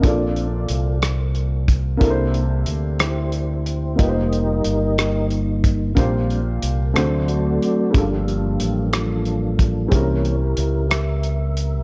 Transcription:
<<
  \new Staff \with { instrumentName = "Tonewheel organ" } { \time 6/8 \key bes \major \tempo 4. = 61 << { d''4 r2 | r4. c''4. | ees''2 r4 | r2 d''4 |
g'4. a'4. | bes'4. bes'4. | } \\ { <f' a'>4. r4. | r4. <e' g'>4. | <g' bes'>2 r4 | r2 <fis' a'>4 |
<bes d'>4. <d' f'>4. | e'4. e''4. | } >> }
  \new Staff \with { instrumentName = "Tonewheel organ" } { \time 6/8 \key bes \major <bes c' d'>8 r2 r8 | <bes d' e' a'>8 r2 r8 | <g bes ees'>2. | <g c' d'>8 r4 <fis a c'>4. |
<f g>2. | <e bes des''>8 r2 r8 | }
  \new Staff \with { instrumentName = "Upright piano" } { \time 6/8 \key bes \major <bes d' f' a' d''>2. | <bes d' e' a' bes' c''>2. | <bes ees' f' g' ces'' c''>2. | <bes d' f' g' c''>4. <a c' d' fis' c''>4. |
<g bes d' f' a'>2. | <g c' des' e' bes'>2. | }
  \new Staff \with { instrumentName = "Upright piano" } { \clef bass \time 6/8 \key bes \major bes,4. r4. | c4. r4. | r2. | bes,4. d4. |
g,4. r4. | c4. r4. | }
  \new Staff \with { instrumentName = "Fingered electric bass" } { \clef bass \time 6/8 \key bes \major bes,,4 c,2 | r4 d,2 | f,,4 g,,2 | bes,,4 c,8 d,4 r8 |
g,,4 a,,2 | c,4 des,2 | }
  \new DrumStaff \with { instrumentName = "Drums" } \drummode { \time 6/8 <hh bd>8 hh8 hh8 <hh ss>8 hh8 <hh bd>8 | <hh bd>8 hh8 hh8 <hh ss>8 hh8 hh8 | <hh bd>8 hh8 hh8 <hh ss>8 hh8 <hh bd>8 | <hh bd>8 hh8 hh8 <hh ss>8 hh8 hh8 |
<hh bd>8 hh8 hh8 <hh ss>8 hh8 <hh bd>8 | <hh bd>8 hh8 hh8 <hh ss>8 hh8 hh8 | }
>>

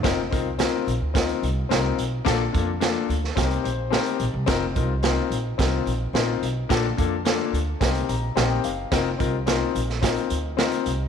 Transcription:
<<
  \new Staff \with { instrumentName = "Grand piano" } { \time 4/4 \key f \mixolydian \tempo 4 = 108 << { r1 | r2 r8 c''8 a''4 | r1 | r2 r8 bes''8 a''16 g''16 f''8 |
r1 | } \\ { <c' ees' f' bes'>8 <c' ees' f' bes'>8 <c' ees' f' bes'>8 r8 <c' ees' f' bes'>8 r8 <c' ees' f' bes'>8 r8 | <bes d' f' a'>8 <bes d' f' a'>8 <bes d' f' a'>8 r8 <c' ees' g' bes'>8 r8 <c' ees' g' bes'>8 r8 | <c' ees' f' bes'>8 <c' ees' f' bes'>8 <c' ees' f' bes'>8 r8 <c' ees' f' bes'>8 r8 <c' ees' f' bes'>8 r8 | <bes d' f' a'>8 <bes d' f' a'>8 <bes d' f' a'>8 r8 <c' ees' g' bes'>8 r8 <c' ees' g' bes'>8 r8 |
<c' ees' f' bes'>8 <c' ees' f' bes'>8 <c' ees' f' bes'>8 r8 <c' ees' f' bes'>8 r8 <c' ees' f' bes'>8 r8 | } >> }
  \new Staff \with { instrumentName = "Upright bass" } { \clef bass \time 4/4 \key f \mixolydian f,,8 c,8. r16 bes,,16 d,8. c,8 c,8 b,,8 | bes,,8 f,4 d,8 c,8 bes,,8. r16 bes,,16 c,16 | f,,8 c,4 bes,,8 c,8 bes,,8 bes,,8 b,,8 | bes,,8 f,4 d,8 c,8 bes,,8 bes,,8 ges,,8 |
f,,8 c,4 bes,,4 d,4 c,8 | }
  \new DrumStaff \with { instrumentName = "Drums" } \drummode { \time 4/4 <hh bd sn>8 <hh bd>8 <hh sn>8 hh8 <hh bd sn>16 hh16 hh8 <hh sn>8 hh8 | <hh bd sn>8 <hh bd>8 <hh sn>8 hh16 sn16 <hh bd sn>16 hh16 hh8 <hh sn>16 hh16 hh8 | <hh bd sn>8 <hh bd>8 <hh sn>8 hh8 <hh bd sn>8 hh8 <hh sn>8 hh8 | <hh bd sn>8 <hh bd>8 <hh sn>8 hh8 <hh bd sn>16 hh16 hh8 <hh sn>8 hh8 |
<hh bd sn>8 <hh bd>8 <hh sn>8 hh16 sn16 <hh bd sn>16 hh16 hh8 <hh sn>16 hh16 hh8 | }
>>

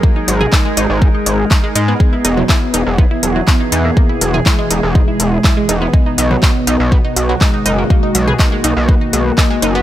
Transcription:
<<
  \new Staff \with { instrumentName = "Synth arpeggio sound" } { \time 4/4 \key e \lydian \tempo 4 = 122 <ais ais'>16 <dis' dis''>16 <fis fis'>16 <gis' gis''>16 <dis' dis''>16 <gis gis'>16 <dis' dis''>16 <gis gis'>16 <dis' dis''>16 <dis' dis''>16 <gis gis'>16 r16 <dis' dis''>16 <gis gis'>16 <dis' dis''>16 <b b'>16 | <gis gis'>16 <e' e''>16 <dis' dis''>16 <fis fis'>16 <e' e''>16 r16 <dis' dis''>16 <fis fis'>16 <b b'>16 <e' e''>16 <fis fis'>16 <fis fis'>16 <e' e''>16 <dis' dis''>16 <dis' dis''>16 <ais ais'>16 | <ais ais'>16 <e' e''>16 <fis fis'>16 <gis' gis''>16 <e' e''>16 <gis gis'>16 <dis' dis''>16 <gis gis'>16 <dis' dis''>16 <e' e''>16 <gis gis'>16 r16 <e' e''>16 <gis gis'>16 <dis' dis''>16 <b b'>16 | <gis gis'>16 <dis' dis''>16 <dis' dis''>16 <fis fis'>16 <dis' dis''>16 r16 <dis' dis''>16 <fis fis'>16 <b b'>16 <dis' dis''>16 <fis fis'>16 <fis fis'>16 <dis' dis''>16 <dis' dis''>16 <dis' dis''>16 <ais ais'>16 |
<ais ais'>16 <dis' dis''>16 <fis fis'>16 <gis' gis''>16 <dis' dis''>16 <gis gis'>16 <dis' dis''>16 <gis gis'>16 <dis' dis''>16 <dis' dis''>16 <gis gis'>16 r16 <dis' dis''>16 <gis gis'>16 <dis' dis''>16 <b b'>16 | }
  \new Staff \with { instrumentName = "Ambient pad" } { \time 4/4 \key e \lydian << { <gis gis' ais'>1 | <e gis'>1~ | <e gis'>1 | <dis fis'>1~ |
<dis fis'>1 | } \\ { dis'1 | b,1~ | b,1~ | b,1~ |
b,1 | } >> }
  \new Staff \with { instrumentName = "Analog polysynth" } { \time 4/4 \key e \lydian fis4 gis2. | b2. b4~ | b4 gis2. | b2. gis4~ |
gis4 ais2. | }
  \new Staff \with { instrumentName = "Analog synth bass" } { \clef bass \time 4/4 \key e \lydian r8 gis,,16 r8. gis,,16 gis,,16 r8 gis,,16 r8. gis,16 r16 | r8 e,,16 r8. e,,16 e,,16 r8 e,,16 r8. e,16 r16 | r8 e,,16 r8. e,,16 e,,16 r8 e,,16 r8. e,,16 r16 | r8 b,,16 r8. b,,16 b,,16 r8 b,,16 r8. fis,,16 r16 |
r8 b,,16 r8. b,,16 b,,16 r8 b,,16 r8. fis,,16 r16 | }
  \new DrumStaff \with { instrumentName = "Drums" } \drummode { \time 4/4 bd8 hh16 toml16 <hc bd>8 hh8 bd8 hh8 <hc bd>8 hh8 | bd8 hh16 toml16 <hc bd>8 hh8 bd8 hh8 <hc bd>8 hh8 | bd8 hh16 toml16 <hc bd>8 hh8 bd8 hh8 <hc bd>8 hh8 | bd8 hh16 toml16 <hc bd>8 hh8 bd8 hh8 <hc bd>8 hh8 |
bd8 hh16 toml16 <hc bd>8 hh8 bd8 hh8 <hc bd>8 hh8 | }
>>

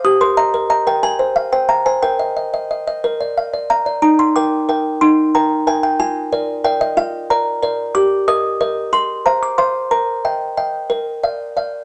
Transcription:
\new Staff \with { instrumentName = "Music box" } { \time 6/8 \key ees \major \tempo 4. = 61 << { ees'''16 c'''16 bes''8 bes''16 g''16 aes''8 f''16 g''16 bes''16 aes''16 | g''4. r4 bes''8 | bes''16 c'''16 d'''4 c'''8 bes''8 aes''16 g''16 | aes''4 g''16 ees''16 f''8 bes''8 r8 |
d'''8 ees'''4 c'''8 bes''16 d'''16 c'''8 | bes''2~ bes''8 r8 | } \\ { g'16 bes'16 ees''16 bes'16 ees''16 bes'16 aes'16 c''8 c''16 f''16 c''16 | bes'16 ees''16 ees''16 ees''16 ees''16 ees''16 bes'16 d''16 f''16 d''16 f''16 d''16 | ees'8 <bes' g''>8 <bes' g''>8 ees'8 <bes' g''>8 <bes' g''>8 | f'8 <bes' d''>8 <bes' d''>8 f'8 <bes' d''>8 <bes' d''>8 |
g'8 <bes' ees''>8 <bes' ees''>8 aes'8 <c'' f''>8 <c'' f''>8 | bes'8 <ees'' g''>8 <ees'' g''>8 bes'8 <d'' f''>8 <d'' f''>8 | } >> }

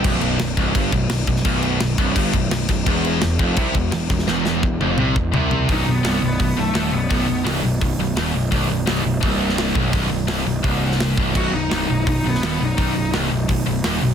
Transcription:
<<
  \new Staff \with { instrumentName = "Lead electric guitar" } { \time 4/4 \tempo 4 = 170 r1 | r1 | r1 | r1 |
dis'8 b4 b4 a4 b8~ | b4 r2. | r1 | r1 |
fis'8 dis'4. dis'8 b4 dis'8~ | dis'4 r2. | }
  \new Staff \with { instrumentName = "Distorted electric guitar" } { \clef bass \time 4/4 b,,4 b,,8 c,8 g,8 b,,8 b,,8 b,,8 | b,,4 b,,8 c,8 g,8 b,,8 b,,8 b,,8 | e,4 e,8 f,8 c8 e,8 e,8 e,8 | e,4 e,8 f,8 c8 e,8 c4 |
b,,8 b,,8 c,8 b,,8 b,,8 b,,8 dis,8 b,,8 | b,,8 b,,8 c,8 b,,8 b,,8 b,,8 dis,8 b,,8 | b,,8 b,,8 c,8 b,,8 c,4. b,,8 | b,,8 b,,8 c,8 b,,8 c,4. b,,8 |
b,,8 b,,8 c,8 b,,8 b,,8 b,,8 dis,8 b,,8 | b,,8 b,,8 c,8 b,,8 b,,8 b,,8 dis,8 b,,8 | }
  \new Staff \with { instrumentName = "Distorted electric guitar" } { \clef bass \time 4/4 b,,4 b,,8 c,8 g,8 b,,8 b,,8 b,,8 | b,,4 b,,8 c,8 g,8 b,,8 b,,8 b,,8 | e,4 e,8 f,8 c8 e,8 e,8 e,8 | e,4 e,8 f,8 c8 e,8 c4 |
b,,8 b,,8 c,8 b,,8 b,,8 b,,8 dis,8 b,,8 | b,,8 b,,8 c,8 b,,8 b,,8 b,,8 dis,8 b,,8 | b,,8 b,,8 c,8 b,,8 c,4. b,,8 | b,,8 b,,8 c,8 b,,8 c,4. b,,8 |
b,,8 b,,8 c,8 b,,8 b,,8 b,,8 dis,8 b,,8 | b,,8 b,,8 c,8 b,,8 b,,8 b,,8 dis,8 b,,8 | }
  \new Staff \with { instrumentName = "Distorted electric guitar" } { \clef bass \time 4/4 r1 | r1 | e,4 e,8 f,8 c8 e,8 e,8 e,8 | e,4 e,8 f,8 c8 e,8 c4 |
b,,8 b,,8 c,8 b,,8 b,,8 b,,8 dis,8 b,,8 | b,,8 b,,8 c,8 b,,8 b,,8 b,,8 dis,8 b,,8 | b,,8 b,,8 c,8 b,,8 c,4. b,,8 | b,,8 b,,8 c,8 b,,8 c,4. b,,8 |
b,,8 b,,8 c,8 b,,8 b,,8 b,,8 dis,8 b,,8 | b,,8 b,,8 c,8 b,,8 b,,8 b,,8 dis,8 b,,8 | }
  \new Staff \with { instrumentName = "Picked electric bass" } { \clef bass \time 4/4 b,,,4 b,,,8 c,,8 g,,8 b,,,8 b,,,8 b,,,8 | b,,,4 b,,,8 c,,8 g,,8 b,,,8 b,,,8 b,,,8 | e,,4 e,,8 f,,8 c,8 e,,8 e,,8 e,,8 | e,,4 e,,8 f,,8 c,8 e,,8 c,4 |
b,,,8 b,,,8 c,,8 b,,,8 b,,,8 b,,,8 dis,,8 b,,,8 | b,,,8 b,,,8 c,,8 b,,,8 b,,,8 b,,,8 dis,,8 b,,,8 | b,,,8 b,,,8 c,,8 b,,,8 c,,4. b,,,8 | b,,,8 b,,,8 c,,8 b,,,8 c,,4. b,,,8 |
b,,,8 b,,,8 c,,8 b,,,8 b,,,8 b,,,8 dis,,8 b,,,8 | b,,,8 b,,,8 c,,8 b,,,8 b,,,8 b,,,8 dis,,8 b,,,8 | }
  \new DrumStaff \with { instrumentName = "Drums" } \drummode { \time 4/4 <cymc bd>8 cymc8 <cymc sn>8 <cymc bd>8 <cymc bd>8 <cymc bd>8 <cymc sn>8 <cymc bd>16 sn16 | <cymc bd>8 cymc8 <cymc sn>8 <cymc bd>8 <cymc bd>8 <cymc bd>8 <cymc sn>8 <cymc bd sn>8 | <cymc bd>8 cymc8 <cymc sn>8 <cymc bd>8 <cymc bd>8 <cymc bd>8 <cymc sn>8 <cymc bd sn>16 sn16 | sn8 sn8 bd8 tommh8 toml8 bd8 tomfh8 tomfh8 |
<hho bd>4 <hho sn>4 <hho bd>4 <hho sn>4 | <hho bd>4 <hho sn>4 <hho bd>4 <hho sn>4 | <hho bd>4 <hho sn>4 <hho bd>8. sn16 <hho sn>8 bd8 | <hho bd>4 <hho sn>4 <hho bd>8. sn16 <hho sn>8 bd8 |
<cymc bd>4 <hho sn>4 <hho bd>8. sn16 <hho sn>4 | <hho bd>4 <hho sn>4 <hho bd>4 <hho sn>4 | }
>>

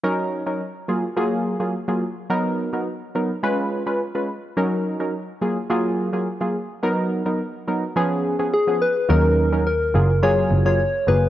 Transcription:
<<
  \new Staff \with { instrumentName = "Soft synth lead" } { \time 4/4 \key fis \major \tempo 4 = 106 r1 | r1 | r1 | r2. gis'8 b'8 |
ais'4 ais'4 cis''8. cis''8. b'8 | }
  \new Staff \with { instrumentName = "Synth keys" } { \time 4/4 \key fis \major <fis cis' dis' ais'>8. <fis cis' dis' ais'>16 r8 <fis ais eis' gis'>16 r16 <fis ais eis' gis'>8. <fis ais eis' gis'>16 r16 <fis ais eis' gis'>16 r8 | <fis b dis' ais'>8. <fis b dis' ais'>16 r8 <fis b dis' ais'>16 r16 <gis cis' eis' b'>8. <gis cis' eis' b'>16 r16 <gis cis' eis' b'>16 r8 | <fis cis' dis' ais'>8. <fis cis' dis' ais'>16 r8 <fis ais eis' gis'>16 r16 <fis ais eis' gis'>8. <fis ais eis' gis'>16 r16 <fis ais eis' gis'>16 r8 | <fis b dis' ais'>8. <fis b dis' ais'>16 r8 <fis b dis' ais'>16 r16 <eis b cis' gis'>8. <eis b cis' gis'>16 r16 <eis b cis' gis'>16 r8 |
<fis cis' dis' ais'>8. <fis cis' dis' ais'>16 r8 <fis ais eis' gis'>16 r16 <fis ais eis' gis'>8. <fis ais eis' gis'>16 r8 <fis ais eis' gis'>16 r16 | }
  \new Staff \with { instrumentName = "Double bass" } { \clef bass \time 4/4 \key fis \major r1 | r1 | r1 | r1 |
dis,4. fis,,4 fis,,8 r8 fis,,8 | }
>>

